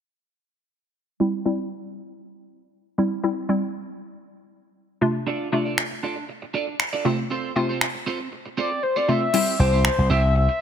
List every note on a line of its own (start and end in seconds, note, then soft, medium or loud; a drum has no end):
1.20 1.40 G3 medium
1.20 1.40 C4 medium
1.20 1.40 E4 medium
1.45 2.25 G3 medium
1.45 2.25 C4 medium
1.45 2.25 E4 loud
2.98 3.18 G3 medium
2.98 3.18 C4 medium
2.98 3.18 E4 medium
3.23 3.44 G3 medium
3.23 3.44 C4 medium
3.23 3.44 E4 medium
3.49 4.28 G3 medium
3.49 4.28 C4 medium
3.49 4.28 E4 medium
5.01 5.43 C3 medium
5.01 5.43 A3 medium
5.01 5.43 D4 medium
5.01 5.43 F4 loud
5.27 5.47 D4 medium
5.27 5.48 F4 medium
5.27 5.48 A4 medium
5.27 5.48 D5 medium
5.52 6.32 C3 medium
5.52 6.32 A3 medium
5.52 5.66 D4 medium
5.52 6.32 D4 medium
5.52 5.65 F4 medium
5.52 6.32 F4 loud
5.52 5.65 A4 medium
5.52 5.64 D5 medium
5.65 5.82 D4 soft
5.65 5.82 F4 medium
5.65 5.82 A4 medium
5.65 5.82 D5 medium
5.78 finger snap loud
5.91 muted clean electric guitar stroke soft
6.03 6.24 D4 medium
6.03 6.16 F4 medium
6.03 6.16 A4 medium
6.03 6.15 D5 medium
6.17 muted clean electric guitar stroke soft
6.29 muted clean electric guitar stroke soft
6.42 muted clean electric guitar stroke soft
6.54 6.75 D4 medium
6.54 6.67 F4 medium
6.54 6.67 A4 medium
6.54 6.66 D5 medium
6.67 muted clean electric guitar stroke soft
6.79 finger snap loud
6.79 muted clean electric guitar stroke soft
6.93 7.05 D4 medium
6.93 7.04 F4 medium
6.93 7.05 A4 medium
6.93 7.06 D5 medium
7.05 7.46 C3 medium
7.05 7.46 A3 medium
7.05 7.22 C4 medium
7.05 7.46 C4 medium
7.05 7.46 F4 medium
7.05 7.18 F4 medium
7.05 7.18 A4 medium
7.05 7.17 C5 medium
7.18 muted clean electric guitar stroke soft
7.30 7.51 C4 medium
7.30 7.51 F4 medium
7.30 7.51 A4 medium
7.30 7.52 C5 medium
7.56 8.35 C3 medium
7.56 8.35 A3 medium
7.56 7.69 C4 medium
7.56 8.35 C4 medium
7.56 7.69 F4 medium
7.56 8.35 F4 medium
7.56 7.68 A4 medium
7.56 7.68 C5 medium
7.69 7.86 C4 soft
7.69 7.86 F4 medium
7.69 7.86 A4 medium
7.69 7.85 C5 medium
7.81 finger snap loud
7.95 muted clean electric guitar stroke soft
8.06 8.27 C4 medium
8.06 8.20 F4 medium
8.06 8.19 A4 medium
8.06 8.19 C5 medium
8.20 muted clean electric guitar stroke medium
8.32 muted clean electric guitar stroke soft
8.46 muted clean electric guitar stroke soft
8.57 8.78 C4 medium
8.57 8.71 F4 medium
8.57 8.70 A4 medium
8.57 8.70 C5 medium
8.57 8.84 D5 medium
8.71 muted clean electric guitar stroke soft
8.83 8.98 C5 medium
8.83 muted clean electric guitar stroke soft
8.96 9.07 C4 medium
8.96 9.07 F4 medium
8.96 9.08 A4 medium
8.96 9.08 C5 medium
8.96 9.10 D5 loud
9.08 9.28 C3 medium
9.08 9.28 A3 medium
9.08 9.25 C4 medium
9.08 9.29 C4 medium
9.08 9.21 F4 medium
9.08 9.29 F4 medium
9.08 9.21 A4 medium
9.08 9.21 C5 medium
9.08 9.61 E5 loud
9.22 muted clean electric guitar stroke soft
9.33 10.13 G3 medium
9.33 9.54 C4 medium
9.33 10.13 C4 medium
9.33 9.55 E4 medium
9.33 10.13 E4 medium
9.33 9.55 G4 medium
9.33 9.55 C5 medium
9.33 crash medium
9.59 9.87 C2 medium
9.59 9.72 C4 medium
9.59 9.72 E4 medium
9.59 9.72 G4 medium
9.59 9.84 C5 loud
9.59 9.71 C5 medium
9.72 9.89 C4 medium
9.72 9.89 E4 medium
9.72 9.89 G4 medium
9.72 9.89 C5 medium
9.85 10.08 C5 medium
9.85 finger snap loud
9.98 10.07 C2 medium
9.98 muted clean electric guitar stroke soft
10.10 10.46 C2 medium
10.10 10.31 C4 medium
10.10 10.23 E4 medium
10.10 10.23 G4 medium
10.10 10.22 C5 medium
10.10 10.34 E5 loud
10.23 muted clean electric guitar stroke soft
10.35 10.61 E5 loud
10.35 muted clean electric guitar stroke soft
10.49 muted clean electric guitar stroke soft